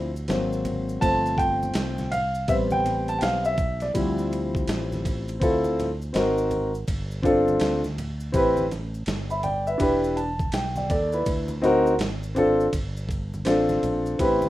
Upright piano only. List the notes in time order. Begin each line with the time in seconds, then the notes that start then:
0.28 F#3 A#3 C4
1.00 F3 A3 C4 A5
1.38 G5
2.11 F5
2.48 G3 B3 C4 E5
2.72 G5
3.09 A5
3.18 F5 G5
3.45 E5
3.82 D5
3.94 F3 G3 C4 E4
5.40 C4 E4 F4 A4
6.13 C4 D#4 F#4 A#4
7.22 C4 D4 F4 A4
8.32 C4 E4 G4 B4
9.30 E5 B5
9.43 D5 G5
9.67 B4 E5
9.78 D4 E4 G4 B4
10.17 A5
10.54 G5
10.77 D5 G5
10.91 A4 D5
11.13 E4 B4
11.62 C4 D#4 F#4 A#4
12.35 C4 D4 F4 A4
13.45 C4 D4 F4 A4
14.18 C4 E4 G4 B4